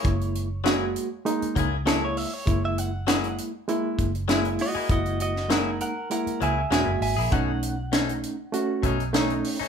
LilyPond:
<<
  \new Staff \with { instrumentName = "Clean electric guitar" } { \time 4/4 \key fis \mixolydian \tempo 4 = 99 cis''2 r4 a'16 cis''16 e''16 cis''16~ | cis''16 e''16 fis''8 fis''8 r2 <fis' dis''>8 | <fis' dis''>8 <fis' dis''>8 <ais' fis''>8 <ais' fis''>8 <ais' fis''>8 <e'' gis''>8 <e'' gis''>8 <e'' gis''>8 | fis''2. r4 | }
  \new Staff \with { instrumentName = "Clean electric guitar" } { \time 4/4 \key fis \mixolydian r4 <fis ais e' gis'>16 r4 r16 <fis ais e' gis'>16 r16 <fis ais e' gis'>16 r8. | r4 <fis ais e' gis'>16 r4. r16 <fis ais e' gis'>16 r8 <ais e' gis'>16 | r4 <fis ais e' gis'>16 r4 r16 <fis ais e' gis'>16 r16 <fis ais e' gis'>16 r8 <ais e' gis'>16 | <b, a cis' dis'>16 r8. <b, a cis' dis'>16 r4 r16 <b, a cis' dis'>16 r16 <b, a cis' dis'>16 r8 <a cis' dis'>16 | }
  \new Staff \with { instrumentName = "Reed electric piano" } { \time 4/4 \key fis \mixolydian <gis ais e'>8 r8 <gis ais fis'>8 r8 <gis ais dis'>8 r8 <gis ais e'>8 r8 | <gis ais e'>8 r8 <gis ais e'>8 r8 <gis ais e'>8 r8 <gis ais e'>8 r8 | <gis ais e'>8 r8 <gis ais dis'>8 r8 <gis ais e'>8 r8 <gis ais fis'>8 r8 | <a cis' dis'>8 r8 <a cis' dis'>8 r8 <a cis' fis'>8 r8 <a cis' dis'>8 r8 | }
  \new Staff \with { instrumentName = "Fingered electric bass" } { \clef bass \time 4/4 \key fis \mixolydian fis,,2 r8 cis,4. | fis,,2 r8 fis,,4~ fis,,16 r16 | fis,,2 r8 cis,8 e,,16 fis,,16 gis,,16 ais,,16 | b,,2 r8 b,,4~ b,,16 r16 | }
  \new DrumStaff \with { instrumentName = "Drums" } \drummode { \time 4/4 <hh bd>16 hh16 hh8 <hh sn>8 hh8 hh16 hh16 <hh bd>8 <hh sn>8 hho8 | <hh bd>8 hh8 <hh sn>16 hh16 hh8 hh8 <hh bd>16 hh16 <hh sn>16 hh16 hho8 | <hh bd>16 hh16 hh16 sn16 <hh sn>8 hh8 hh16 hh16 hh8 <hh sn>8 hho8 | <hh bd>8 hh8 <hh sn>16 hh16 hh8 hh8 <hh bd>16 hh16 <hh sn>16 hh16 hho8 | }
>>